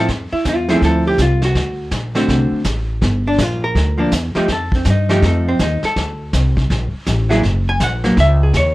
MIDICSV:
0, 0, Header, 1, 5, 480
1, 0, Start_track
1, 0, Key_signature, -1, "major"
1, 0, Tempo, 367422
1, 105, Time_signature, 4, 2, 24, 8
1, 11424, End_track
2, 0, Start_track
2, 0, Title_t, "Hollow-body jazz guitar"
2, 0, Program_c, 0, 26
2, 419, Note_on_c, 0, 64, 74
2, 584, Note_off_c, 0, 64, 0
2, 635, Note_on_c, 0, 65, 66
2, 895, Note_on_c, 0, 53, 55
2, 904, Note_off_c, 0, 65, 0
2, 904, Note_on_c, 0, 57, 51
2, 909, Note_on_c, 0, 64, 62
2, 910, Note_on_c, 0, 60, 61
2, 918, Note_on_c, 0, 68, 71
2, 1073, Note_off_c, 0, 68, 0
2, 1108, Note_on_c, 0, 69, 71
2, 1383, Note_off_c, 0, 69, 0
2, 1405, Note_on_c, 0, 67, 75
2, 1512, Note_off_c, 0, 53, 0
2, 1517, Note_off_c, 0, 57, 0
2, 1519, Note_off_c, 0, 60, 0
2, 1519, Note_off_c, 0, 64, 0
2, 1557, Note_off_c, 0, 67, 0
2, 1592, Note_on_c, 0, 65, 69
2, 1865, Note_off_c, 0, 65, 0
2, 1893, Note_on_c, 0, 66, 71
2, 2482, Note_off_c, 0, 66, 0
2, 2808, Note_on_c, 0, 50, 53
2, 2814, Note_on_c, 0, 57, 59
2, 2818, Note_on_c, 0, 60, 61
2, 2824, Note_on_c, 0, 66, 65
2, 3429, Note_off_c, 0, 50, 0
2, 3432, Note_off_c, 0, 57, 0
2, 3434, Note_off_c, 0, 60, 0
2, 3437, Note_off_c, 0, 66, 0
2, 4282, Note_on_c, 0, 62, 78
2, 4478, Note_off_c, 0, 62, 0
2, 4478, Note_on_c, 0, 65, 62
2, 4749, Note_off_c, 0, 65, 0
2, 4756, Note_on_c, 0, 70, 80
2, 5191, Note_off_c, 0, 70, 0
2, 5195, Note_on_c, 0, 53, 53
2, 5204, Note_on_c, 0, 58, 61
2, 5217, Note_on_c, 0, 62, 62
2, 5361, Note_off_c, 0, 53, 0
2, 5365, Note_off_c, 0, 58, 0
2, 5372, Note_off_c, 0, 62, 0
2, 5689, Note_on_c, 0, 53, 56
2, 5696, Note_on_c, 0, 57, 53
2, 5702, Note_on_c, 0, 63, 65
2, 5708, Note_on_c, 0, 67, 69
2, 5848, Note_off_c, 0, 53, 0
2, 5851, Note_off_c, 0, 57, 0
2, 5854, Note_off_c, 0, 63, 0
2, 5857, Note_off_c, 0, 67, 0
2, 5911, Note_on_c, 0, 69, 61
2, 6186, Note_off_c, 0, 69, 0
2, 6207, Note_on_c, 0, 60, 39
2, 6359, Note_off_c, 0, 60, 0
2, 6403, Note_on_c, 0, 63, 65
2, 6644, Note_off_c, 0, 63, 0
2, 6650, Note_on_c, 0, 53, 55
2, 6655, Note_on_c, 0, 57, 64
2, 6660, Note_on_c, 0, 63, 61
2, 6667, Note_on_c, 0, 67, 60
2, 6864, Note_off_c, 0, 67, 0
2, 6864, Note_on_c, 0, 69, 79
2, 7143, Note_off_c, 0, 69, 0
2, 7158, Note_off_c, 0, 57, 0
2, 7163, Note_on_c, 0, 60, 64
2, 7272, Note_off_c, 0, 53, 0
2, 7276, Note_off_c, 0, 63, 0
2, 7318, Note_off_c, 0, 60, 0
2, 7338, Note_on_c, 0, 63, 68
2, 7620, Note_off_c, 0, 63, 0
2, 7641, Note_on_c, 0, 69, 77
2, 8237, Note_off_c, 0, 69, 0
2, 9530, Note_on_c, 0, 54, 55
2, 9541, Note_on_c, 0, 64, 69
2, 9542, Note_on_c, 0, 58, 58
2, 9547, Note_on_c, 0, 68, 68
2, 9689, Note_off_c, 0, 54, 0
2, 9694, Note_off_c, 0, 64, 0
2, 9695, Note_off_c, 0, 58, 0
2, 9697, Note_off_c, 0, 68, 0
2, 10047, Note_on_c, 0, 80, 97
2, 10200, Note_off_c, 0, 80, 0
2, 10233, Note_on_c, 0, 78, 83
2, 10499, Note_on_c, 0, 54, 60
2, 10503, Note_on_c, 0, 58, 72
2, 10508, Note_off_c, 0, 78, 0
2, 10654, Note_off_c, 0, 54, 0
2, 10655, Note_off_c, 0, 58, 0
2, 10711, Note_on_c, 0, 76, 82
2, 10987, Note_off_c, 0, 76, 0
2, 11016, Note_on_c, 0, 68, 52
2, 11164, Note_off_c, 0, 68, 0
2, 11197, Note_on_c, 0, 73, 73
2, 11424, Note_off_c, 0, 73, 0
2, 11424, End_track
3, 0, Start_track
3, 0, Title_t, "Upright bass"
3, 0, Program_c, 1, 32
3, 102, Note_on_c, 1, 41, 63
3, 387, Note_off_c, 1, 41, 0
3, 585, Note_on_c, 1, 40, 80
3, 1050, Note_off_c, 1, 40, 0
3, 1063, Note_on_c, 1, 38, 77
3, 1529, Note_off_c, 1, 38, 0
3, 1545, Note_on_c, 1, 36, 83
3, 2010, Note_off_c, 1, 36, 0
3, 2024, Note_on_c, 1, 38, 65
3, 2490, Note_off_c, 1, 38, 0
3, 2501, Note_on_c, 1, 34, 81
3, 2969, Note_off_c, 1, 34, 0
3, 2987, Note_on_c, 1, 36, 84
3, 3270, Note_off_c, 1, 36, 0
3, 3462, Note_on_c, 1, 33, 85
3, 3930, Note_off_c, 1, 33, 0
3, 3947, Note_on_c, 1, 31, 83
3, 4412, Note_off_c, 1, 31, 0
3, 4426, Note_on_c, 1, 34, 92
3, 4892, Note_off_c, 1, 34, 0
3, 4900, Note_on_c, 1, 38, 86
3, 5369, Note_off_c, 1, 38, 0
3, 5380, Note_on_c, 1, 40, 88
3, 5667, Note_off_c, 1, 40, 0
3, 5859, Note_on_c, 1, 41, 71
3, 6329, Note_off_c, 1, 41, 0
3, 6341, Note_on_c, 1, 43, 92
3, 6810, Note_off_c, 1, 43, 0
3, 6820, Note_on_c, 1, 41, 83
3, 7290, Note_off_c, 1, 41, 0
3, 7307, Note_on_c, 1, 39, 85
3, 7591, Note_off_c, 1, 39, 0
3, 7787, Note_on_c, 1, 38, 74
3, 8253, Note_off_c, 1, 38, 0
3, 8270, Note_on_c, 1, 36, 86
3, 8735, Note_off_c, 1, 36, 0
3, 8753, Note_on_c, 1, 34, 89
3, 9035, Note_off_c, 1, 34, 0
3, 9229, Note_on_c, 1, 33, 85
3, 9694, Note_off_c, 1, 33, 0
3, 9712, Note_on_c, 1, 30, 76
3, 10176, Note_off_c, 1, 30, 0
3, 10189, Note_on_c, 1, 34, 91
3, 10654, Note_off_c, 1, 34, 0
3, 10669, Note_on_c, 1, 37, 94
3, 11134, Note_off_c, 1, 37, 0
3, 11149, Note_on_c, 1, 39, 88
3, 11424, Note_off_c, 1, 39, 0
3, 11424, End_track
4, 0, Start_track
4, 0, Title_t, "Muted upright bass strokes"
4, 415, Note_on_c, 9, 29, 37
4, 546, Note_off_c, 9, 29, 0
4, 3286, Note_on_c, 9, 29, 38
4, 3416, Note_off_c, 9, 29, 0
4, 5691, Note_on_c, 9, 29, 37
4, 5822, Note_off_c, 9, 29, 0
4, 7610, Note_on_c, 9, 29, 36
4, 7741, Note_off_c, 9, 29, 0
4, 9049, Note_on_c, 9, 29, 39
4, 9180, Note_off_c, 9, 29, 0
4, 11424, End_track
5, 0, Start_track
5, 0, Title_t, "Drums"
5, 103, Note_on_c, 9, 25, 44
5, 103, Note_on_c, 9, 38, 40
5, 105, Note_on_c, 9, 36, 22
5, 234, Note_off_c, 9, 38, 0
5, 236, Note_off_c, 9, 36, 0
5, 585, Note_on_c, 9, 44, 47
5, 586, Note_on_c, 9, 36, 19
5, 588, Note_on_c, 9, 38, 54
5, 716, Note_off_c, 9, 44, 0
5, 717, Note_off_c, 9, 36, 0
5, 719, Note_off_c, 9, 38, 0
5, 893, Note_on_c, 9, 38, 38
5, 1024, Note_off_c, 9, 38, 0
5, 1067, Note_on_c, 9, 36, 21
5, 1074, Note_off_c, 9, 25, 0
5, 1074, Note_on_c, 9, 25, 40
5, 1074, Note_on_c, 9, 38, 40
5, 1197, Note_off_c, 9, 36, 0
5, 1205, Note_off_c, 9, 38, 0
5, 1544, Note_on_c, 9, 44, 44
5, 1545, Note_on_c, 9, 36, 21
5, 1546, Note_on_c, 9, 38, 57
5, 1674, Note_off_c, 9, 44, 0
5, 1676, Note_off_c, 9, 36, 0
5, 1677, Note_off_c, 9, 38, 0
5, 1853, Note_on_c, 9, 38, 39
5, 1984, Note_off_c, 9, 38, 0
5, 2026, Note_on_c, 9, 36, 17
5, 2029, Note_off_c, 9, 25, 0
5, 2029, Note_on_c, 9, 25, 42
5, 2029, Note_on_c, 9, 38, 41
5, 2156, Note_off_c, 9, 36, 0
5, 2160, Note_off_c, 9, 38, 0
5, 2499, Note_on_c, 9, 44, 46
5, 2502, Note_on_c, 9, 38, 52
5, 2504, Note_on_c, 9, 36, 19
5, 2630, Note_off_c, 9, 44, 0
5, 2632, Note_off_c, 9, 38, 0
5, 2635, Note_off_c, 9, 36, 0
5, 2812, Note_on_c, 9, 38, 38
5, 2942, Note_off_c, 9, 38, 0
5, 2985, Note_on_c, 9, 36, 21
5, 2987, Note_off_c, 9, 25, 0
5, 2987, Note_on_c, 9, 25, 49
5, 2987, Note_on_c, 9, 38, 42
5, 3116, Note_off_c, 9, 36, 0
5, 3118, Note_off_c, 9, 38, 0
5, 3458, Note_on_c, 9, 44, 46
5, 3461, Note_on_c, 9, 38, 49
5, 3462, Note_on_c, 9, 36, 16
5, 3589, Note_off_c, 9, 44, 0
5, 3591, Note_off_c, 9, 38, 0
5, 3593, Note_off_c, 9, 36, 0
5, 3943, Note_on_c, 9, 36, 23
5, 3946, Note_off_c, 9, 25, 0
5, 3946, Note_on_c, 9, 25, 53
5, 3946, Note_on_c, 9, 38, 44
5, 4074, Note_off_c, 9, 36, 0
5, 4077, Note_off_c, 9, 38, 0
5, 4423, Note_on_c, 9, 36, 18
5, 4423, Note_on_c, 9, 44, 54
5, 4426, Note_on_c, 9, 38, 56
5, 4553, Note_off_c, 9, 36, 0
5, 4554, Note_off_c, 9, 44, 0
5, 4556, Note_off_c, 9, 38, 0
5, 4901, Note_on_c, 9, 36, 20
5, 4906, Note_off_c, 9, 25, 0
5, 4906, Note_on_c, 9, 25, 40
5, 4906, Note_on_c, 9, 38, 43
5, 5031, Note_off_c, 9, 36, 0
5, 5036, Note_off_c, 9, 38, 0
5, 5378, Note_on_c, 9, 44, 60
5, 5380, Note_on_c, 9, 36, 20
5, 5380, Note_on_c, 9, 38, 52
5, 5508, Note_off_c, 9, 44, 0
5, 5511, Note_off_c, 9, 36, 0
5, 5511, Note_off_c, 9, 38, 0
5, 5683, Note_on_c, 9, 38, 40
5, 5814, Note_off_c, 9, 38, 0
5, 5854, Note_off_c, 9, 25, 0
5, 5854, Note_on_c, 9, 25, 49
5, 5854, Note_on_c, 9, 38, 41
5, 5859, Note_on_c, 9, 36, 18
5, 5985, Note_off_c, 9, 38, 0
5, 5989, Note_off_c, 9, 36, 0
5, 6166, Note_on_c, 9, 36, 55
5, 6297, Note_off_c, 9, 36, 0
5, 6334, Note_on_c, 9, 44, 59
5, 6337, Note_on_c, 9, 38, 55
5, 6342, Note_on_c, 9, 36, 22
5, 6465, Note_off_c, 9, 44, 0
5, 6467, Note_off_c, 9, 38, 0
5, 6473, Note_off_c, 9, 36, 0
5, 6652, Note_on_c, 9, 38, 37
5, 6783, Note_off_c, 9, 38, 0
5, 6821, Note_off_c, 9, 25, 0
5, 6821, Note_on_c, 9, 25, 43
5, 6821, Note_on_c, 9, 38, 37
5, 6823, Note_on_c, 9, 36, 17
5, 6951, Note_off_c, 9, 38, 0
5, 6954, Note_off_c, 9, 36, 0
5, 7303, Note_on_c, 9, 44, 46
5, 7305, Note_on_c, 9, 38, 57
5, 7306, Note_on_c, 9, 36, 16
5, 7433, Note_off_c, 9, 44, 0
5, 7436, Note_off_c, 9, 36, 0
5, 7436, Note_off_c, 9, 38, 0
5, 7610, Note_on_c, 9, 38, 40
5, 7740, Note_off_c, 9, 38, 0
5, 7787, Note_off_c, 9, 25, 0
5, 7787, Note_on_c, 9, 25, 45
5, 7787, Note_on_c, 9, 38, 43
5, 7788, Note_on_c, 9, 36, 19
5, 7918, Note_off_c, 9, 38, 0
5, 7919, Note_off_c, 9, 36, 0
5, 8268, Note_on_c, 9, 44, 48
5, 8271, Note_on_c, 9, 36, 20
5, 8271, Note_on_c, 9, 38, 55
5, 8399, Note_off_c, 9, 44, 0
5, 8401, Note_off_c, 9, 38, 0
5, 8402, Note_off_c, 9, 36, 0
5, 8580, Note_on_c, 9, 36, 50
5, 8585, Note_on_c, 9, 38, 37
5, 8710, Note_off_c, 9, 36, 0
5, 8716, Note_off_c, 9, 38, 0
5, 8751, Note_off_c, 9, 25, 0
5, 8751, Note_on_c, 9, 25, 48
5, 8751, Note_on_c, 9, 38, 36
5, 8752, Note_on_c, 9, 36, 17
5, 8882, Note_off_c, 9, 36, 0
5, 8882, Note_off_c, 9, 38, 0
5, 9227, Note_on_c, 9, 44, 42
5, 9230, Note_on_c, 9, 38, 50
5, 9232, Note_on_c, 9, 36, 16
5, 9358, Note_off_c, 9, 44, 0
5, 9361, Note_off_c, 9, 38, 0
5, 9363, Note_off_c, 9, 36, 0
5, 9544, Note_on_c, 9, 38, 37
5, 9675, Note_off_c, 9, 38, 0
5, 9713, Note_off_c, 9, 25, 0
5, 9713, Note_on_c, 9, 25, 46
5, 9713, Note_on_c, 9, 38, 39
5, 9714, Note_on_c, 9, 36, 25
5, 9844, Note_off_c, 9, 38, 0
5, 9845, Note_off_c, 9, 36, 0
5, 10190, Note_on_c, 9, 44, 52
5, 10193, Note_on_c, 9, 36, 18
5, 10193, Note_on_c, 9, 38, 55
5, 10321, Note_off_c, 9, 44, 0
5, 10324, Note_off_c, 9, 36, 0
5, 10324, Note_off_c, 9, 38, 0
5, 10498, Note_on_c, 9, 38, 37
5, 10628, Note_off_c, 9, 38, 0
5, 10671, Note_on_c, 9, 36, 22
5, 10673, Note_off_c, 9, 25, 0
5, 10673, Note_on_c, 9, 25, 42
5, 10673, Note_on_c, 9, 38, 41
5, 10802, Note_off_c, 9, 36, 0
5, 10803, Note_off_c, 9, 38, 0
5, 11152, Note_on_c, 9, 36, 21
5, 11154, Note_on_c, 9, 44, 51
5, 11157, Note_on_c, 9, 38, 52
5, 11283, Note_off_c, 9, 36, 0
5, 11285, Note_off_c, 9, 44, 0
5, 11287, Note_off_c, 9, 38, 0
5, 11424, Note_off_c, 9, 25, 0
5, 11424, End_track
0, 0, End_of_file